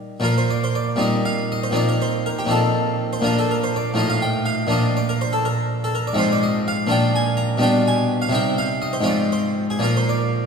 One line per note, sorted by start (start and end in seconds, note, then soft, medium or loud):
0.00 0.16 D#3 soft
0.00 0.17 G3 soft
0.00 0.18 A#3 soft
0.00 0.19 D#4 soft
0.20 0.95 A#2 soft
0.20 0.96 F3 soft
0.20 0.97 A#3 soft
0.20 0.98 F4 soft
0.25 0.37 A#4 medium
0.38 0.50 C5 medium
0.50 0.62 D5 medium
0.64 0.76 C5 medium
0.75 0.97 D5 medium
0.96 1.70 A#2 soft
0.96 1.71 G3 soft
0.96 1.71 C4 soft
0.96 1.72 D#4 soft
1.01 1.22 D#5 medium
1.25 1.50 F5 medium
1.52 1.64 D#5 medium
1.63 1.75 C5 soft
1.71 2.44 A#2 soft
1.71 2.46 F3 soft
1.71 2.46 C4 soft
1.71 2.47 D#4 soft
1.76 1.88 D5 medium
1.89 2.00 A#4 medium
2.02 2.22 C5 medium
2.26 2.38 A#4 medium
2.39 2.50 G4 soft
2.46 3.19 A#2 soft
2.46 3.20 F3 soft
2.46 3.21 C4 soft
2.46 3.21 D#4 soft
2.51 3.12 A4 medium
3.13 3.24 C5 medium
3.21 3.94 A#2 soft
3.21 3.94 F3 soft
3.21 3.95 D4 soft
3.21 3.95 F4 soft
3.26 3.37 A#4 medium
3.39 3.50 A4 medium
3.51 3.62 A#4 medium
3.64 3.74 C5 medium
3.76 3.99 D5 medium
3.94 4.68 A2 soft
3.94 4.67 F3 soft
3.94 4.69 D#4 soft
3.94 4.69 F4 soft
3.99 4.11 D#5 medium
4.10 4.22 F5 medium
4.22 4.47 G5 medium
4.46 4.71 F5 medium
4.67 6.12 A#2 soft
4.67 6.12 F3 soft
4.67 6.13 D4 soft
4.67 6.14 F4 soft
4.72 4.97 D#5 medium
4.97 5.09 D5 medium
5.09 5.21 A#4 medium
5.21 5.33 C5 medium
5.33 5.45 A4 medium
5.45 5.82 A#4 medium
5.84 5.95 A4 medium
5.95 6.07 A#4 medium
6.07 6.19 D5 medium
6.13 6.85 G#2 medium
6.13 6.86 F3 soft
6.13 6.87 C4 soft
6.18 6.88 F4 soft
6.18 6.31 C5 medium
6.32 6.43 D5 medium
6.43 6.66 D#5 medium
6.68 6.87 F5 medium
6.87 7.58 A#2 soft
6.87 7.59 F3 soft
6.87 7.58 D4 soft
6.87 7.60 F4 soft
6.92 7.15 G5 medium
7.16 7.39 G#5 medium
7.37 7.58 A#5 medium
7.57 8.29 B2 soft
7.57 8.30 G3 soft
7.57 8.30 D4 soft
7.57 8.31 F4 soft
7.63 7.87 G5 medium
7.87 8.22 G#5 medium
8.22 8.34 F5 medium
8.29 9.02 C3 soft
8.29 9.03 G3 soft
8.29 9.02 C4 soft
8.29 9.04 D#4 soft
8.34 8.58 G5 medium
8.58 8.79 F5 medium
8.82 8.94 D#5 medium
8.93 9.06 C5 medium
9.01 9.78 G#2 soft
9.01 9.78 F3 soft
9.01 9.79 C4 soft
9.01 9.79 F4 soft
9.06 9.32 D5 medium
9.32 9.65 C5 medium
9.70 9.83 G#4 medium
9.79 10.46 A#2 soft
9.79 10.46 F3 soft
9.79 10.46 A#3 soft
9.79 10.46 F4 soft
9.84 9.96 A#4 medium
9.97 10.09 C5 medium
10.09 10.46 D5 medium